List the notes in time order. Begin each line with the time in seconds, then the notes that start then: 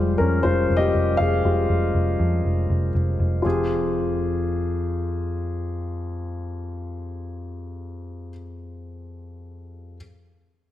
Already playing: F1 G3 G#3 F4 C5
0.18 F2 C#4 A#4
0.43 F1 G3 G#3 F4 C5
0.70 F1
0.77 G4 D#5
0.94 F1
1.17 F1 G#4 F5
1.43 F1 G#3 F4 G4
1.69 F1
1.94 F1
2.19 F2
2.45 F1
2.70 F1
2.95 F1
3.19 F1
3.42 F1 F2 F4 G4
3.46 G#4